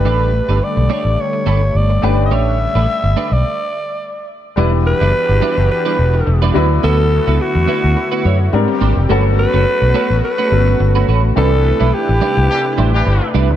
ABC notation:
X:1
M:4/4
L:1/16
Q:"Swing 16ths" 1/4=106
K:Amix
V:1 name="Alto saxophone"
B4 d4 c4 d3- d/2 _e/2 | e6- e d6- d z2 | z2 B6 B6 z2 | A4 F8 z4 |
z2 B6 B6 z2 | A4 G8 z4 |]
V:2 name="Clean electric guitar"
[A,DGB]2 z [A,DGB] z2 [A,DGc] z3 [A,DGB] z3 [A,DGB] z | [A,DGc]2 z [A,DGB] z2 [A,DGB] z8 z | [G,DEB] z2 [G,DEB] z2 [G,DEB] z2 [G,DEB] z3 [G,DEB] [B,EFB] z | [B,EFB] z2 [B,EFB] z2 [B,EFB] z2 [B,EFB] [B,EFc] z3 [^A,DG^B] z |
[A,CFB] z2 [A,CFB] z2 [A,CFB] z2 [A,CFB] z3 [A,CFB] [A,CFB] z | [G,DEB] z2 [G,DEB] z2 [G,DEB] z3 [G,DE=c] z3 [G,DEB] z |]
V:3 name="Grand piano"
[A,DGB]12- [A,DGB]2 [A,CDGB]2- | [A,CDGB]8 z8 | [G,DEB]12- [G,DEB]2 [F,DEB]2- | [F,DEB]12 [G,^B,D^A]4 |
[F,B,CA]8- [F,B,CA]2 [F,A,B,CA]6 | [E,=CDB]16 |]
V:4 name="Horn section"
z16 | z16 | z16 | z16 |
z16 | z8 [E,DG] z2 [E,DG]3 z2 |]
V:5 name="Analog synth pad"
[D,G,A,]16- | [D,G,A,]8 z8 | [E,B,DFG]12- [E,B,DFG]2 [D,A,EF]2- | [D,A,EF]12 [G,^B,G]4 |
[A,B,F]16 | [=C,DEB]16 |]
V:6 name="Fingered electric bass" clef=bass
A,,,3 G,,, z B,,, z A,,, z2 G,,,2 G,,,2 G,,,2 | A,,,3 A,,, z G,,, z B,,, z8 | E,,,3 F,,, z G,,, z F,,, z2 E,,,2 E,,,2 D,,2 | D,,3 C,, z E,, z D,, z2 F,,2 ^G,, z ^G,,, =F,,, |
G,,,3 F,,, z B,,, z A,,, z2 G,,,2 G,,,2 A,,,2 | =C,,3 B,,, z A,,, z C,, z2 A,,,2 G,,, z C,, D,, |]